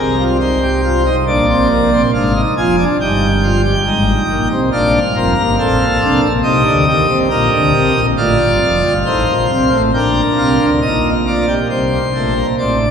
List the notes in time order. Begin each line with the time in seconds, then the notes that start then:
Already playing: C2 C3 G#4 A#4
0.18 F4
0.40 D#4 C5
0.62 G4
0.84 F4
1.06 D#4
1.27 A#1 A#2 D4 D5
1.49 C4
1.71 A#3
1.93 C4
2.14 G#1 G#2 D4 F5
2.35 D#4
2.57 F1 F2 F4 G#5
2.78 D4
3.00 G1 G2 D#4 G5
3.44 F4
3.65 G4
3.86 G#1 G#2 D#4
4.30 A#1 A#2
4.51 C2 C3
4.72 A#1 A#2 D4 D5 F5
5.15 F1 F2 C4 A#4
5.37 G1 G2 A#3
5.58 A1 A2 C4 A4
5.79 A#1 A#2
6.00 C2 C3 D4
6.23 A#1 A#2
6.43 C2 C3 D#4 G4 D#5
6.65 D2 D3
6.87 D#2 D#3 G4
7.09 C2 C3
7.30 A#1 A#2 A#4 D#5
7.52 D2 D3
7.73 C2 C3
7.94 A#1 A#2
8.17 A1 A2 F4 D5 F5
8.40 G1 G2
8.62 F1 F2
8.83 G1 G2
9.06 A1 A2 D#4 C5
9.28 A#1 A#2
9.50 C2 C3 C4
9.72 A1 A2
9.93 A#1 A#2 D4 A#4 G5
10.38 C2 C3 F5
10.60 D2 D3
10.82 A#1 A#2 D#4 D#5
11.26 F4 D5
11.48 G4
11.70 C2 C3 G3 C5
12.14 A#1 A#2 A3
12.36 A#3
12.58 A1 A2 C4 D5
12.80 D4